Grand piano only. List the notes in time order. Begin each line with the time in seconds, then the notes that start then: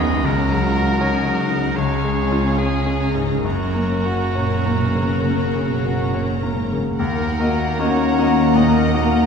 Already playing: B1 F#3 F#4 D#5
0.00 F#2
0.25 C#2
0.51 F#3
0.76 F#4
1.01 C#5
1.26 F#3
1.52 C#3
1.78 C#2
2.04 G#3
2.32 F4
2.58 C#5
2.86 G#3
3.15 G#2
3.44 F#2
3.74 A#3
4.06 F#4
4.35 C#5
4.66 A#3
4.95 C#3
5.25 A#3
5.55 C#3
5.85 F#4
6.14 C#5
6.43 A#3
6.72 C#3
6.99 D#2
7.40 A#3 F#4 D#5
7.79 A#3 F#4 D#5
8.18 A#3 F#4 D#5
8.55 A#2
8.94 A#3 F#4 D#5